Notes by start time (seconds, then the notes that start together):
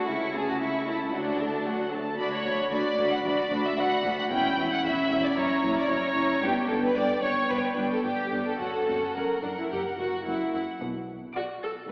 0.07 C#2 C#4 E4 C#6
0.35 A3 C#4 G#4 A5
0.49 F#4
0.60 C#4 E4 C#6
0.87 A3 C#4 E4 A5
1.08 E4
1.14 D2 F#3 D4 F#4 F#5
1.40 A3 A4 A5
1.66 F#3 F#4 F#5
1.92 A3 A4 A5
2.19 D2 D4 F#4 D5 B5
2.33 C#5
2.45 D2 D4 F#4 B5
2.72 D2 D4 F#4 D5 B5
2.98 D2 D4 F#4 B5
3.12 F#5
3.23 D2 D4 F#4 D5 B5
3.51 D2 D4 F#4 B5
3.65 E5
3.78 D2 D4 F#4 F#5 B5
4.03 D2 D4 F#4 B5
4.19 F#5
4.30 E1 E2 C#4 E4 G5 B5
4.57 E1 E2 C#4 E4 B5
4.72 F#5
4.83 E1 E2 C#4 E4 E5 B5
5.10 E1 E2 C#4 E4 B5
5.25 D5
5.36 F#1 F#2 C#4 E4 C#5 A#5
5.63 F#1 F#2 C#4 E4 A#5
5.79 D5
5.89 F#1 F#2 C#4 E4 C#5 A#5
6.14 F#1 F#2 C#4 E4 A#5
6.41 G1 G2 B3 D4 G4 G5
6.69 G1 G2 B3 D4 A4 G5
6.84 B4
6.95 G1 G2 B3 D4 D5 G5
7.22 G1 G2 B3 D4 C#5 G5
7.49 G1 G2 B3 D4 B4 G5
7.58 C#5
7.65 B4
7.76 G1 G2 B3 D4 G5
7.93 A4
8.04 G1 G2 B3 D4 G4 G5
8.31 G1 G2 B3 D4 G5
8.48 A4
8.58 F#1 F#2 C#4 F#4 A4 F#5
8.87 F#1 F#2 C#4 F#4 F#5
9.14 F#1 F#2 C#4 A#4 F#5
9.41 F#1 F#2 D4 F#5
9.58 E4
9.70 F#1 F#2 G4 F#5
9.98 F#1 F#2 F#4 F#5
10.25 F#1 F#2 E4 F#5
10.53 F#1 F#2 E4 F#5
10.81 B1 B2
11.35 F#4 D5 F#5 D6
11.63 A4